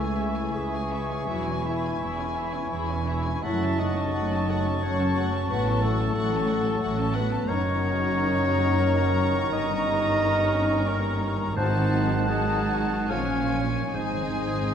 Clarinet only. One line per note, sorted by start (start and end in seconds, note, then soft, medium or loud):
0.00 0.56 A4 medium
0.55 1.29 G#4 medium
1.27 1.66 F#4 medium
1.64 3.44 E4 medium
3.43 3.80 E5 medium
3.79 4.82 D#5 medium
4.82 5.26 C#5 medium
5.50 5.84 B4 medium
5.82 7.17 A4 medium
7.15 7.50 B4 medium
7.48 9.52 C#5 loud
9.53 10.89 D#5 loud
10.88 11.22 A#4 medium
11.57 12.25 C5 medium
12.29 13.12 G#4 medium
13.10 13.96 C#5 medium
13.94 14.74 C5 medium